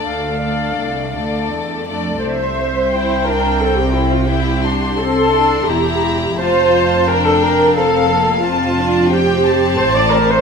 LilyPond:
<<
  \new Staff \with { instrumentName = "Violin section" } { \time 3/4 \key c \mixolydian \tempo 4 = 87 r2. | e''4 g''2 | g''8 c'''4. bes''4 | a''4 g''4 f''4 |
a''4 g''8 a''4. | }
  \new Staff \with { instrumentName = "Flute" } { \time 3/4 \key c \mixolydian f''2 r4 | r2. | r2. | r2. |
r2. | }
  \new Staff \with { instrumentName = "Viola section" } { \time 3/4 \key c \mixolydian <a d'>8 <a d'>4 <a d'>4 <a d'>8 | c''4. bes'8 a'16 g'16 e'16 f'16 | g'4 a'4 g'4 | c''4 bes'16 a'16 bes'8 a'4 |
f'4 g'4 c''16 d''16 bes'16 c''16 | }
  \new Staff \with { instrumentName = "Violin section" } { \time 3/4 \key c \mixolydian <a' d''>8 <a' d''>4 <a' d''>4 <a' d''>8 | r4 e'8 d'8 c'4 | e'8 d'8 c'8 d'8 e'4 | f'4 d'4 c'8 bes8 |
c'8 d'8 c'2 | }
  \new Staff \with { instrumentName = "Cello section" } { \clef bass \time 3/4 \key c \mixolydian d,4 c,8 d,8 e,8 f,8 | c,2.~ | c,2 e,4 | f,2.~ |
f,2 a,4 | }
  \new Staff \with { instrumentName = "Double bass section" } { \clef bass \time 3/4 \key c \mixolydian r2. | c,2.~ | c,2 e,,4 | f,,2.~ |
f,,2 a,,4 | }
>>